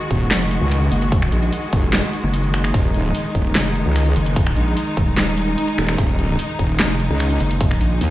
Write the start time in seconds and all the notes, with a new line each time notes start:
Already playing: D#3 G#3 F#4
0.11 D#1, kick, open hi-hat
0.31 F1, snare, clap, closed hi-hat
0.51 closed hi-hat
0.61 C#2
0.71 finger snap, closed hi-hat
0.82 closed hi-hat
0.92 F#1, open hi-hat
1.02 closed hi-hat
1.12 kick, closed hi-hat
1.22 finger snap
1.32 A#1, closed hi-hat
1.43 closed hi-hat
1.53 closed hi-hat
1.73 F1, kick, open hi-hat
1.93 snare, clap, closed hi-hat
2.13 closed hi-hat
2.24 F#1
2.34 closed hi-hat
2.44 closed hi-hat
2.54 finger snap, open hi-hat
2.64 finger snap, closed hi-hat
2.74 D#1 D#4, kick, closed hi-hat
2.94 closed hi-hat
3.15 closed hi-hat
3.35 D#1, kick, open hi-hat
3.55 F1, snare, clap, closed hi-hat
3.75 closed hi-hat
3.86 C#2
3.96 finger snap, closed hi-hat
4.06 closed hi-hat
4.16 F#1, open hi-hat
4.26 closed hi-hat
4.36 kick, closed hi-hat
4.47 finger snap
4.57 A#1, closed hi-hat
4.77 closed hi-hat
4.97 D#1, kick, open hi-hat
5.17 snare, clap, closed hi-hat
5.38 closed hi-hat
5.58 closed hi-hat
5.68 closed hi-hat
5.78 D#1, finger snap, open hi-hat
5.89 finger snap, closed hi-hat
5.98 D#1, kick, closed hi-hat
6.19 closed hi-hat
6.39 closed hi-hat
6.59 D#1, kick, open hi-hat
6.80 F1, snare, clap, closed hi-hat
7.00 closed hi-hat
7.10 C#2
7.20 finger snap, closed hi-hat
7.30 closed hi-hat
7.40 F#1, open hi-hat
7.51 closed hi-hat
7.61 kick, closed hi-hat
7.71 finger snap
7.81 A#1, closed hi-hat
8.01 D#2, closed hi-hat